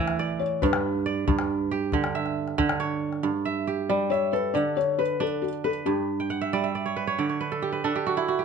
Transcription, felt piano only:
0, 0, Header, 1, 2, 480
1, 0, Start_track
1, 0, Tempo, 437637
1, 677, Time_signature, 12, 3, 24, 8
1, 9267, End_track
2, 0, Start_track
2, 0, Title_t, "Felt piano"
2, 0, Program_c, 0, 0
2, 0, Note_on_c, 0, 76, 81
2, 431, Note_on_c, 0, 73, 72
2, 451, Note_off_c, 0, 76, 0
2, 679, Note_on_c, 0, 71, 85
2, 681, Note_off_c, 0, 73, 0
2, 3030, Note_off_c, 0, 71, 0
2, 4271, Note_on_c, 0, 74, 83
2, 4495, Note_off_c, 0, 74, 0
2, 4496, Note_on_c, 0, 73, 84
2, 4727, Note_off_c, 0, 73, 0
2, 4746, Note_on_c, 0, 71, 70
2, 4972, Note_off_c, 0, 71, 0
2, 4977, Note_on_c, 0, 74, 80
2, 5208, Note_off_c, 0, 74, 0
2, 5228, Note_on_c, 0, 73, 80
2, 5467, Note_on_c, 0, 71, 79
2, 5478, Note_off_c, 0, 73, 0
2, 5713, Note_on_c, 0, 69, 73
2, 5718, Note_off_c, 0, 71, 0
2, 5942, Note_on_c, 0, 66, 61
2, 5961, Note_off_c, 0, 69, 0
2, 5997, Note_off_c, 0, 66, 0
2, 6192, Note_on_c, 0, 69, 71
2, 6247, Note_off_c, 0, 69, 0
2, 6423, Note_on_c, 0, 67, 72
2, 7106, Note_off_c, 0, 67, 0
2, 9267, End_track
0, 0, End_of_file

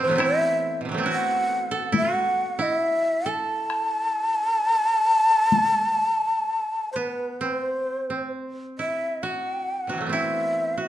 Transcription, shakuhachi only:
0, 0, Header, 1, 2, 480
1, 0, Start_track
1, 0, Tempo, 878477
1, 109, Time_signature, 4, 2, 24, 8
1, 2511, Tempo, 934579
1, 4431, Tempo, 888889
1, 5806, End_track
2, 0, Start_track
2, 0, Title_t, "Shakuhachi"
2, 0, Program_c, 0, 77
2, 9, Note_on_c, 0, 72, 72
2, 111, Note_off_c, 0, 72, 0
2, 130, Note_on_c, 0, 76, 94
2, 432, Note_off_c, 0, 76, 0
2, 613, Note_on_c, 0, 78, 96
2, 1052, Note_off_c, 0, 78, 0
2, 1075, Note_on_c, 0, 76, 90
2, 1173, Note_off_c, 0, 76, 0
2, 1173, Note_on_c, 0, 78, 90
2, 1431, Note_on_c, 0, 75, 88
2, 1439, Note_off_c, 0, 78, 0
2, 1508, Note_off_c, 0, 75, 0
2, 1508, Note_on_c, 0, 76, 88
2, 1802, Note_on_c, 0, 81, 99
2, 1810, Note_off_c, 0, 76, 0
2, 3706, Note_off_c, 0, 81, 0
2, 3709, Note_on_c, 0, 72, 64
2, 3733, Note_on_c, 0, 71, 70
2, 3738, Note_off_c, 0, 72, 0
2, 3954, Note_off_c, 0, 71, 0
2, 3954, Note_on_c, 0, 71, 78
2, 4015, Note_off_c, 0, 71, 0
2, 4015, Note_on_c, 0, 72, 78
2, 4430, Note_off_c, 0, 72, 0
2, 4675, Note_on_c, 0, 76, 75
2, 4912, Note_on_c, 0, 78, 75
2, 4920, Note_off_c, 0, 76, 0
2, 5388, Note_off_c, 0, 78, 0
2, 5391, Note_on_c, 0, 76, 77
2, 5806, Note_off_c, 0, 76, 0
2, 5806, End_track
0, 0, End_of_file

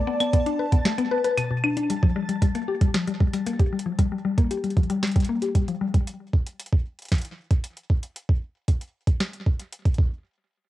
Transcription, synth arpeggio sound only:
0, 0, Header, 1, 2, 480
1, 0, Start_track
1, 0, Tempo, 521739
1, 1746, Time_signature, 4, 2, 24, 8
1, 9835, End_track
2, 0, Start_track
2, 0, Title_t, "Synth arpeggio sound"
2, 0, Program_c, 0, 84
2, 66, Note_on_c, 0, 59, 106
2, 103, Note_off_c, 0, 59, 0
2, 187, Note_on_c, 0, 59, 77
2, 223, Note_off_c, 0, 59, 0
2, 306, Note_on_c, 0, 59, 101
2, 367, Note_off_c, 0, 59, 0
2, 425, Note_on_c, 0, 62, 104
2, 487, Note_off_c, 0, 62, 0
2, 546, Note_on_c, 0, 71, 78
2, 608, Note_off_c, 0, 71, 0
2, 666, Note_on_c, 0, 59, 81
2, 703, Note_off_c, 0, 59, 0
2, 786, Note_on_c, 0, 57, 83
2, 848, Note_off_c, 0, 57, 0
2, 906, Note_on_c, 0, 59, 106
2, 943, Note_off_c, 0, 59, 0
2, 1027, Note_on_c, 0, 71, 104
2, 1119, Note_off_c, 0, 71, 0
2, 1147, Note_on_c, 0, 71, 99
2, 1239, Note_off_c, 0, 71, 0
2, 1267, Note_on_c, 0, 47, 83
2, 1304, Note_off_c, 0, 47, 0
2, 1387, Note_on_c, 0, 47, 77
2, 1448, Note_off_c, 0, 47, 0
2, 1508, Note_on_c, 0, 62, 75
2, 1544, Note_off_c, 0, 62, 0
2, 1628, Note_on_c, 0, 62, 78
2, 1719, Note_off_c, 0, 62, 0
2, 1749, Note_on_c, 0, 55, 83
2, 1784, Note_off_c, 0, 55, 0
2, 1868, Note_on_c, 0, 53, 79
2, 1929, Note_off_c, 0, 53, 0
2, 1988, Note_on_c, 0, 55, 102
2, 2024, Note_off_c, 0, 55, 0
2, 2107, Note_on_c, 0, 55, 76
2, 2144, Note_off_c, 0, 55, 0
2, 2227, Note_on_c, 0, 55, 98
2, 2288, Note_off_c, 0, 55, 0
2, 2347, Note_on_c, 0, 58, 100
2, 2408, Note_off_c, 0, 58, 0
2, 2467, Note_on_c, 0, 67, 78
2, 2528, Note_off_c, 0, 67, 0
2, 2588, Note_on_c, 0, 55, 80
2, 2624, Note_off_c, 0, 55, 0
2, 2707, Note_on_c, 0, 53, 80
2, 2768, Note_off_c, 0, 53, 0
2, 2827, Note_on_c, 0, 55, 103
2, 2864, Note_off_c, 0, 55, 0
2, 2948, Note_on_c, 0, 55, 77
2, 2984, Note_off_c, 0, 55, 0
2, 3067, Note_on_c, 0, 55, 102
2, 3128, Note_off_c, 0, 55, 0
2, 3187, Note_on_c, 0, 58, 100
2, 3248, Note_off_c, 0, 58, 0
2, 3306, Note_on_c, 0, 67, 78
2, 3368, Note_off_c, 0, 67, 0
2, 3426, Note_on_c, 0, 55, 73
2, 3463, Note_off_c, 0, 55, 0
2, 3548, Note_on_c, 0, 53, 76
2, 3609, Note_off_c, 0, 53, 0
2, 3667, Note_on_c, 0, 55, 102
2, 3704, Note_off_c, 0, 55, 0
2, 3788, Note_on_c, 0, 55, 79
2, 3824, Note_off_c, 0, 55, 0
2, 3907, Note_on_c, 0, 55, 101
2, 3968, Note_off_c, 0, 55, 0
2, 4027, Note_on_c, 0, 58, 104
2, 4088, Note_off_c, 0, 58, 0
2, 4146, Note_on_c, 0, 67, 81
2, 4208, Note_off_c, 0, 67, 0
2, 4266, Note_on_c, 0, 55, 76
2, 4303, Note_off_c, 0, 55, 0
2, 4385, Note_on_c, 0, 53, 74
2, 4447, Note_off_c, 0, 53, 0
2, 4505, Note_on_c, 0, 55, 104
2, 4543, Note_off_c, 0, 55, 0
2, 4627, Note_on_c, 0, 55, 80
2, 4663, Note_off_c, 0, 55, 0
2, 4746, Note_on_c, 0, 55, 102
2, 4808, Note_off_c, 0, 55, 0
2, 4867, Note_on_c, 0, 58, 98
2, 4928, Note_off_c, 0, 58, 0
2, 4986, Note_on_c, 0, 67, 72
2, 5047, Note_off_c, 0, 67, 0
2, 5106, Note_on_c, 0, 55, 79
2, 5143, Note_off_c, 0, 55, 0
2, 5226, Note_on_c, 0, 53, 75
2, 5288, Note_off_c, 0, 53, 0
2, 5345, Note_on_c, 0, 55, 103
2, 5383, Note_off_c, 0, 55, 0
2, 5466, Note_on_c, 0, 55, 77
2, 5503, Note_off_c, 0, 55, 0
2, 9835, End_track
0, 0, End_of_file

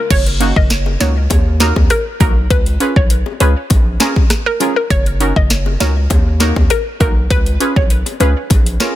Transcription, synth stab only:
0, 0, Header, 1, 2, 480
1, 0, Start_track
1, 0, Key_signature, 6, "major"
1, 0, Tempo, 600000
1, 84, Time_signature, 4, 2, 24, 8
1, 7165, End_track
2, 0, Start_track
2, 0, Title_t, "Synth stab"
2, 0, Program_c, 0, 62
2, 320, Note_on_c, 0, 58, 80
2, 323, Note_on_c, 0, 61, 73
2, 326, Note_on_c, 0, 63, 74
2, 328, Note_on_c, 0, 66, 88
2, 424, Note_off_c, 0, 58, 0
2, 425, Note_off_c, 0, 61, 0
2, 427, Note_off_c, 0, 63, 0
2, 428, Note_off_c, 0, 66, 0
2, 800, Note_on_c, 0, 58, 80
2, 803, Note_on_c, 0, 61, 71
2, 806, Note_on_c, 0, 63, 71
2, 808, Note_on_c, 0, 66, 88
2, 904, Note_off_c, 0, 58, 0
2, 905, Note_off_c, 0, 61, 0
2, 907, Note_off_c, 0, 63, 0
2, 908, Note_off_c, 0, 66, 0
2, 1280, Note_on_c, 0, 58, 94
2, 1283, Note_on_c, 0, 63, 85
2, 1285, Note_on_c, 0, 66, 86
2, 1288, Note_on_c, 0, 70, 104
2, 1384, Note_off_c, 0, 58, 0
2, 1385, Note_off_c, 0, 63, 0
2, 1386, Note_off_c, 0, 66, 0
2, 1388, Note_off_c, 0, 70, 0
2, 1760, Note_on_c, 0, 58, 79
2, 1763, Note_on_c, 0, 63, 70
2, 1765, Note_on_c, 0, 66, 70
2, 1768, Note_on_c, 0, 70, 84
2, 1864, Note_off_c, 0, 58, 0
2, 1865, Note_off_c, 0, 63, 0
2, 1866, Note_off_c, 0, 66, 0
2, 1868, Note_off_c, 0, 70, 0
2, 2240, Note_on_c, 0, 61, 77
2, 2243, Note_on_c, 0, 65, 75
2, 2245, Note_on_c, 0, 68, 71
2, 2248, Note_on_c, 0, 71, 91
2, 2344, Note_off_c, 0, 61, 0
2, 2345, Note_off_c, 0, 65, 0
2, 2346, Note_off_c, 0, 68, 0
2, 2348, Note_off_c, 0, 71, 0
2, 2720, Note_on_c, 0, 61, 79
2, 2723, Note_on_c, 0, 65, 72
2, 2725, Note_on_c, 0, 68, 73
2, 2728, Note_on_c, 0, 71, 85
2, 2824, Note_off_c, 0, 61, 0
2, 2825, Note_off_c, 0, 65, 0
2, 2826, Note_off_c, 0, 68, 0
2, 2828, Note_off_c, 0, 71, 0
2, 3201, Note_on_c, 0, 61, 97
2, 3203, Note_on_c, 0, 65, 85
2, 3205, Note_on_c, 0, 68, 84
2, 3208, Note_on_c, 0, 70, 104
2, 3304, Note_off_c, 0, 61, 0
2, 3305, Note_off_c, 0, 65, 0
2, 3306, Note_off_c, 0, 68, 0
2, 3308, Note_off_c, 0, 70, 0
2, 3680, Note_on_c, 0, 61, 78
2, 3683, Note_on_c, 0, 65, 73
2, 3686, Note_on_c, 0, 68, 73
2, 3688, Note_on_c, 0, 70, 85
2, 3784, Note_off_c, 0, 61, 0
2, 3785, Note_off_c, 0, 65, 0
2, 3787, Note_off_c, 0, 68, 0
2, 3788, Note_off_c, 0, 70, 0
2, 4160, Note_on_c, 0, 61, 79
2, 4163, Note_on_c, 0, 63, 71
2, 4165, Note_on_c, 0, 66, 74
2, 4168, Note_on_c, 0, 70, 86
2, 4264, Note_off_c, 0, 61, 0
2, 4265, Note_off_c, 0, 63, 0
2, 4266, Note_off_c, 0, 66, 0
2, 4268, Note_off_c, 0, 70, 0
2, 4640, Note_on_c, 0, 61, 77
2, 4643, Note_on_c, 0, 63, 75
2, 4645, Note_on_c, 0, 66, 71
2, 4648, Note_on_c, 0, 70, 91
2, 4744, Note_off_c, 0, 61, 0
2, 4745, Note_off_c, 0, 63, 0
2, 4746, Note_off_c, 0, 66, 0
2, 4748, Note_off_c, 0, 70, 0
2, 5120, Note_on_c, 0, 58, 98
2, 5122, Note_on_c, 0, 63, 83
2, 5125, Note_on_c, 0, 66, 84
2, 5127, Note_on_c, 0, 70, 105
2, 5224, Note_off_c, 0, 58, 0
2, 5225, Note_off_c, 0, 63, 0
2, 5226, Note_off_c, 0, 66, 0
2, 5227, Note_off_c, 0, 70, 0
2, 5600, Note_on_c, 0, 58, 77
2, 5603, Note_on_c, 0, 63, 70
2, 5605, Note_on_c, 0, 66, 71
2, 5608, Note_on_c, 0, 70, 89
2, 5704, Note_off_c, 0, 58, 0
2, 5705, Note_off_c, 0, 63, 0
2, 5706, Note_off_c, 0, 66, 0
2, 5708, Note_off_c, 0, 70, 0
2, 6080, Note_on_c, 0, 61, 82
2, 6083, Note_on_c, 0, 65, 73
2, 6086, Note_on_c, 0, 68, 74
2, 6088, Note_on_c, 0, 71, 89
2, 6184, Note_off_c, 0, 61, 0
2, 6185, Note_off_c, 0, 65, 0
2, 6186, Note_off_c, 0, 68, 0
2, 6188, Note_off_c, 0, 71, 0
2, 6560, Note_on_c, 0, 61, 76
2, 6563, Note_on_c, 0, 65, 69
2, 6566, Note_on_c, 0, 68, 75
2, 6568, Note_on_c, 0, 71, 87
2, 6664, Note_off_c, 0, 61, 0
2, 6665, Note_off_c, 0, 65, 0
2, 6666, Note_off_c, 0, 68, 0
2, 6668, Note_off_c, 0, 71, 0
2, 7040, Note_on_c, 0, 61, 92
2, 7043, Note_on_c, 0, 65, 90
2, 7045, Note_on_c, 0, 68, 82
2, 7048, Note_on_c, 0, 70, 100
2, 7144, Note_off_c, 0, 61, 0
2, 7145, Note_off_c, 0, 65, 0
2, 7146, Note_off_c, 0, 68, 0
2, 7148, Note_off_c, 0, 70, 0
2, 7165, End_track
0, 0, End_of_file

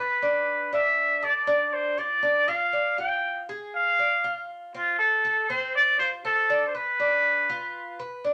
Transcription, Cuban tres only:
0, 0, Header, 1, 2, 480
1, 0, Start_track
1, 0, Tempo, 500835
1, 701, Time_signature, 4, 2, 24, 8
1, 7989, End_track
2, 0, Start_track
2, 0, Title_t, "Cuban tres"
2, 0, Program_c, 0, 25
2, 0, Note_on_c, 0, 71, 67
2, 210, Note_off_c, 0, 71, 0
2, 214, Note_on_c, 0, 62, 62
2, 683, Note_off_c, 0, 62, 0
2, 696, Note_on_c, 0, 62, 63
2, 1164, Note_off_c, 0, 62, 0
2, 1174, Note_on_c, 0, 69, 65
2, 1410, Note_off_c, 0, 69, 0
2, 1411, Note_on_c, 0, 62, 88
2, 1882, Note_off_c, 0, 62, 0
2, 1896, Note_on_c, 0, 65, 62
2, 2132, Note_off_c, 0, 65, 0
2, 2134, Note_on_c, 0, 62, 73
2, 2371, Note_off_c, 0, 62, 0
2, 2376, Note_on_c, 0, 65, 75
2, 2612, Note_off_c, 0, 65, 0
2, 2615, Note_on_c, 0, 74, 63
2, 2852, Note_off_c, 0, 74, 0
2, 2857, Note_on_c, 0, 65, 67
2, 3326, Note_off_c, 0, 65, 0
2, 3345, Note_on_c, 0, 68, 76
2, 3810, Note_off_c, 0, 68, 0
2, 3824, Note_on_c, 0, 74, 68
2, 4057, Note_off_c, 0, 74, 0
2, 4064, Note_on_c, 0, 65, 69
2, 4530, Note_off_c, 0, 65, 0
2, 4547, Note_on_c, 0, 60, 70
2, 5011, Note_off_c, 0, 60, 0
2, 5028, Note_on_c, 0, 69, 71
2, 5259, Note_off_c, 0, 69, 0
2, 5269, Note_on_c, 0, 60, 86
2, 5732, Note_off_c, 0, 60, 0
2, 5748, Note_on_c, 0, 65, 69
2, 5978, Note_off_c, 0, 65, 0
2, 5987, Note_on_c, 0, 60, 80
2, 6218, Note_off_c, 0, 60, 0
2, 6227, Note_on_c, 0, 62, 73
2, 6458, Note_off_c, 0, 62, 0
2, 6466, Note_on_c, 0, 71, 65
2, 6697, Note_off_c, 0, 71, 0
2, 6705, Note_on_c, 0, 62, 70
2, 7169, Note_off_c, 0, 62, 0
2, 7184, Note_on_c, 0, 65, 81
2, 7647, Note_off_c, 0, 65, 0
2, 7663, Note_on_c, 0, 71, 66
2, 7894, Note_off_c, 0, 71, 0
2, 7902, Note_on_c, 0, 62, 68
2, 7989, Note_off_c, 0, 62, 0
2, 7989, End_track
0, 0, End_of_file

